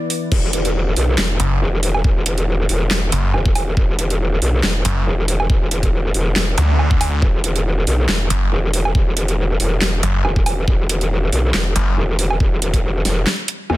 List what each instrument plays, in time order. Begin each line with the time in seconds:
Already playing: analog synth pad E3 B3 E4, ambient pad E4 B4 D5
0.10 open hi-hat
0.32 wobble bass E1, kick, crash
0.53 closed hi-hat
0.65 closed hi-hat
0.96 wobble bass B1, open hi-hat
1.18 wobble bass E1, snare, clap
1.40 detuned saw bass F#1, closed hi-hat
1.61 wobble bass E1
1.83 open hi-hat
1.94 low woodblock
2.04 wobble bass E1, kick
2.26 closed hi-hat
2.38 closed hi-hat
2.69 wobble bass E1, open hi-hat
2.91 wobble bass E1, snare, clap
3.12 detuned saw bass F#1, closed hi-hat
3.34 wobble bass E1, low woodblock
3.46 kick
3.55 open hi-hat, low woodblock
3.77 wobble bass E1, kick
3.99 closed hi-hat
4.10 closed hi-hat
4.42 wobble bass B1, open hi-hat
4.63 wobble bass E1, snare, clap
4.85 detuned saw bass F#1, closed hi-hat
5.07 wobble bass E1
5.28 open hi-hat
5.40 low woodblock
5.50 wobble bass E1, kick
5.71 closed hi-hat
5.83 kick, closed hi-hat
6.14 wobble bass E1, open hi-hat
6.36 wobble bass E1, snare, clap
6.58 detuned saw bass D2, closed hi-hat, zap
6.79 low woodblock
6.91 kick
7.01 open hi-hat, low woodblock
7.22 wobble bass E1, kick
7.44 closed hi-hat
7.56 closed hi-hat
7.87 wobble bass B1, open hi-hat
8.09 wobble bass E1, snare, clap
8.30 detuned saw bass F#1, closed hi-hat
8.52 wobble bass E1
8.74 open hi-hat
8.85 low woodblock
8.95 wobble bass E1, kick
9.17 closed hi-hat
9.28 closed hi-hat
9.60 wobble bass E1, open hi-hat
9.81 wobble bass E1, snare, clap
10.03 detuned saw bass F#1, closed hi-hat
10.25 wobble bass E1, low woodblock
10.36 kick
10.46 open hi-hat, low woodblock
10.68 wobble bass E1, kick
10.89 closed hi-hat
11.01 closed hi-hat
11.32 wobble bass B1, open hi-hat
11.54 wobble bass E1, snare, clap
11.76 detuned saw bass F#1, closed hi-hat
11.97 wobble bass E1
12.19 open hi-hat
12.30 low woodblock
12.40 wobble bass E1, kick
12.62 closed hi-hat
12.74 kick, closed hi-hat
13.05 wobble bass E1, snare, open hi-hat
13.27 snare, clap
13.48 closed hi-hat
13.70 wobble bass E2, high tom, low woodblock